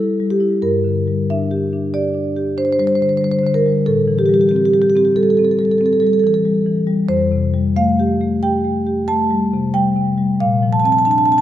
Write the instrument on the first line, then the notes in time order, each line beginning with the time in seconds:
marimba
Already playing: F3 G3
0.00 E4
0.20 G3
0.30 G4
0.40 E4
0.62 G2 A#4
0.84 D3
1.08 G3
1.30 D4 E5
1.51 G4
1.73 D4
1.94 G4 D5
2.14 D4
2.36 G4
2.58 D4 C5
2.65 C5
2.73 C5
2.79 G3 C5
2.87 C5
2.95 C5
3.01 D3 C5
3.09 C5
3.17 C5
3.21 G3 C5
3.31 C5
3.39 C5
3.43 D3 C5
3.54 A#4
3.66 G3
3.86 A2 A4
4.08 E3
4.19 G4
4.26 G3 G4
4.34 G4
4.41 G4
4.49 C4 G4
4.56 G4
4.65 G4
4.73 G3 G4
4.82 G4
4.90 G4
4.96 C4 G4
5.05 G4
5.16 G3 A4
5.23 A4
5.30 A4
5.37 C4 A4
5.45 A4
5.51 A4
5.59 G3 A4
5.65 A4
5.71 A4
5.78 C4 A4
5.86 A4
5.93 A4
6.00 G3 A4
6.07 A4
6.13 A4
6.19 A4
6.24 E3 A4
6.34 A4
6.45 G3
6.66 E3
6.87 G3
7.09 F2 C5
7.32 C3
7.54 G3
7.76 A3 F5
8.00 G4
8.21 A3
8.43 G4 G5
8.64 A3
8.87 G4
9.08 A3 A5
9.31 G3
9.54 C3
9.74 G3 G5
9.96 C3
10.18 G3
10.40 A#2 F5
10.63 F3
10.73 A5
10.80 A5
10.84 C4 A5
10.92 A5
10.98 A5
11.05 D4 A5
11.11 A5
11.18 A5
11.25 C4 A5
11.32 A5
11.38 A5